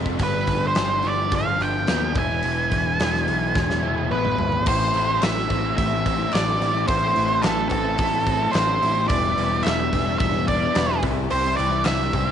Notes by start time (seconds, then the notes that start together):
Already playing: F1 F2 C3 F3 G3 A3 C4 F4 A4
0.06 kick
0.17 G1 G2 D3 F3 B3, kick, open hi-hat
0.21 D4 B4
0.47 G1 D3, kick, open hi-hat
0.67 C5
0.75 G1 F3, snare, open hi-hat
1.01 G1 G2 D3 F3 B3 D4, open hi-hat
1.07 D5
1.32 G1 F3, kick, open hi-hat
1.36 F5
1.59 G1 F4 G5, open hi-hat
1.87 D#2 G2 D3 F3 B3 D4, snare, open hi-hat
2.15 E1 E3 G#3 B3 G#5, kick, open hi-hat
2.19 E4
2.43 E1 E3, open hi-hat
2.71 E1 E3, kick, open hi-hat
2.99 E1 E3 G#3 B3, snare, open hi-hat
3.03 E4
3.15 snare
3.26 B1 E3, open hi-hat
3.54 E1 G#3, kick, snare
3.70 snare
3.82 E1 G#3 B3 E4, high tom
3.86 E3
3.98 high tom
4.11 A1 B3 B4, mid tom
4.25 mid tom
4.38 G#1 G#3, floor tom
4.52 floor tom
4.66 A1 A2 E3 A3 C4 E4 C5, kick, crash
4.94 A1 E3 A3 C4 E4, open hi-hat
5.08 A3 C4 E4
5.21 A1 A2 E3 A3 C4 E4 E5, snare, clap, open hi-hat
5.49 A1 E3 A3 C4 E4, kick, open hi-hat
5.64 A3 C4 E4
5.77 A1 A3 E5, kick, open hi-hat
5.91 A3 C4 E4
6.04 C4, kick, open hi-hat
6.19 A3 C4 E4
6.32 A1 A2 E3 A3 C4 E4 A4 D5, snare, clap, open hi-hat
6.47 A3 C4 E4
6.59 A1 E3 A3 C4 E4, open hi-hat
6.74 A3 C4 E4
6.87 A1 A2 E3 A3 C4 E4 C5, kick, open hi-hat
7.14 A1 E3 A3 C4 E4, open hi-hat
7.27 A3 C4 E4
7.41 A1 A2 E3 A3 C4 E4 A4, snare, clap, open hi-hat
7.69 A1 E3 A3 C4 E4 A4, kick, open hi-hat
7.83 A3 C4 E4
7.98 A1 A3, kick, open hi-hat
8.11 A3 C4 E4
8.26 C4, kick, open hi-hat
8.39 A3 C4 E4
8.51 A1 A2 E3 A3 C4 E4 A4 C5, clap, open hi-hat
8.55 snare
8.66 A3 C4 E4
8.80 A1 E3 A3 C4 E4, open hi-hat
8.93 A3 C4 E4
9.08 E1 E3 G3 B3 E4 D5, kick, open hi-hat
9.34 E1 E3 G3 B3 E4, open hi-hat
9.50 G3 B3 E4
9.63 E1 E3 G3 B3 E4 E5, snare, clap, open hi-hat
9.91 E1 E3 G3 B3 D4 E4, kick, open hi-hat
10.05 G3 B3 E4
10.19 E1 G3 E5, kick, open hi-hat
10.32 G3 B3 E4
10.47 D4 D5, kick, open hi-hat
10.59 G3 B3 E4
10.73 E1 E3 G3 B3 E4 B4, snare, clap, open hi-hat
10.87 G3 B3 E4
11.01 C2 C3 G3 C4 E4, kick, open hi-hat
11.15 G3 C4 E4
11.29 C2 C3 G3 C4 E4 C5, open hi-hat
11.57 C2 C3 E3 G3 C4 E4 D5, open hi-hat
11.70 G3 C4 E4
11.84 C2 C3 G3 C4 E4 E5, snare, clap, open hi-hat
12.12 C2 C3 G3 C4 E4, kick, open hi-hat
12.26 G3 C4 E4